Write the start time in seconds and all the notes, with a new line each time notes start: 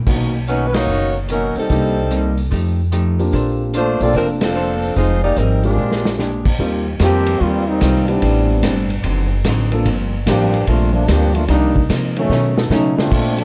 0.06 B1 B2 D#3 A#3 B3 C#4 D#4 F#4, kick, crash
0.48 B2 D#3 F#3 A#3 C#4 D#4 B4, closed hi-hat
0.67 B4
0.74 A#3 D#4 F#4 C#5, snare, ride
0.87 F#1 B2 D#3 A#3 C#4
1.29 B2 D#3 F#3 A#3 C#4 D#4 A#4, closed hi-hat
1.55 G3 C4 D#4 A4, muted upright bass stroke, open hi-hat
1.69 C2 C3 G3 A#3 C4 D4 D#4 G4, kick, open hi-hat
2.11 C3 G3 A#3 D#4, closed hi-hat
2.37 open hi-hat
2.51 F2 F3 A3 D#4 G4, kick, open hi-hat
2.92 F3 A3 D#4 G4, closed hi-hat
3.19 A#3 C4 D4 F4 G4, open hi-hat
3.32 A#1 A#3 D4 A4 C5, kick, open hi-hat
3.74 A3 A#3 D4 F4 A4 C5, closed hi-hat
4.00 B1 A#3 C4 D4 F4 A4 D5, open hi-hat
4.14 F1 F3 A#3 C4 D4 A4 A#4 C5, kick, open hi-hat
4.41 F3 C4 D4 A4, snare, ride
4.55 A#3 D4 A4 C5
4.82 open hi-hat
4.95 F1 F3 G#3 C4 D#4 F4 G#4 C5, kick, open hi-hat
5.23 A#3 D#4 G4 D5
5.36 G#1 F3 G3 C4 D#4 G#4 A#4, closed hi-hat
5.63 G#3 C4 D4 F4 G4 A#4, open hi-hat
5.77 A#1 A#2 G#3 D4 G4
5.92 snare
6.05 snare
6.18 A#2 G#3 D4 G4, snare
6.45 kick, crash
6.59 D#2 D#3 G3 A#3 C4 D#4 F4 G4, kick
6.99 F2 D#3 F3 G3 A#3 C4 F4 G4, kick, snare, hi-hat pedal, ride
7.26 ride
7.41 D#2 D#3 G3 A#3 C4 F4, kick
7.67 G3 A#3 C4 D#4
7.81 C2 D#3 G3 C4 F4, kick, snare, hi-hat pedal, ride
8.08 G3 B3 C4 D4 E4 G4, ride
8.21 A1 A2 G3 C4 D4, kick, ride
8.63 G1 A2 G3 C4 D4, kick, snare, hi-hat pedal, ride
8.90 ride
9.03 F#1 D3 F#3 C4 D#4, kick, ride
9.44 A1 D3 F#3 C4 D#4, kick, snare, hi-hat pedal, ride
9.72 A#3 C4 D4 F4 A4, ride
9.85 G1 G2 F3 A#3 C4, kick, ride
10.26 A1 G2 F3 A#3 C4 D4 G4, kick, snare, hi-hat pedal, ride
10.54 ride
10.67 A#1 G2 F3 A3 A#3 C4 D4 F4, kick, ride
10.93 F3 A3 A#3 D4
11.07 D2 G2 F3 A#3 C4 D4 G4, kick, snare, hi-hat pedal, ride
11.34 A3 A#3 D4 F4, ride
11.48 C2 C3 F3 G3 A#3 D4 D#4, kick, snare, ride
11.76 kick
11.89 C3 F3 A#3 D#4, kick, snare, hi-hat pedal, ride
12.16 D#3 F#3 A3 C#4, ride
12.29 B2 A3 C#4 D#4, snare
12.57 B3 C#4 D#4 F#4 A4, snare
12.70 B2 C#3 F#3 A3 C#4 D#4, snare, hi-hat pedal
12.97 A3 C4 D4 F4, snare
13.11 A#2 A#3 D4 A4 C5, kick, crash
13.38 F3 C4 D4 A4, ride